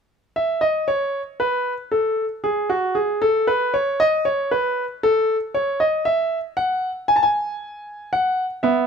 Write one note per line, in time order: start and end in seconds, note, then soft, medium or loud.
0.36 0.61 E5 medium
0.61 0.87 D#5 medium
0.88 1.20 C#5 medium
1.40 1.72 B4 medium
1.92 2.24 A4 medium
2.44 2.69 G#4 medium
2.70 2.95 F#4 medium
2.95 3.20 G#4 medium
3.22 3.47 A4 medium
3.47 3.73 B4 medium
3.74 3.99 C#5 medium
4.00 4.25 D#5 medium
4.25 4.50 C#5 medium
4.51 4.83 B4 medium
5.03 5.35 A4 medium
5.54 5.80 C#5 medium
5.80 6.05 D#5 medium
6.05 6.38 E5 medium
6.57 6.89 F#5 medium
7.08 7.16 G#5 medium
7.16 7.23 A5 medium
7.23 8.09 G#5 medium
8.13 8.44 F#5 medium
8.63 8.87 B3 medium
8.63 8.87 E5 medium